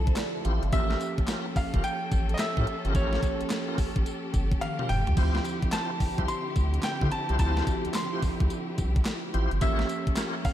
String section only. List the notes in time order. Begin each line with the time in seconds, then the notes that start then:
Already playing: D3 F3 C4 E4 A4
0.72 C#4 G4 A4
5.17 D3 F3 C4 E4
9.62 C#4 A4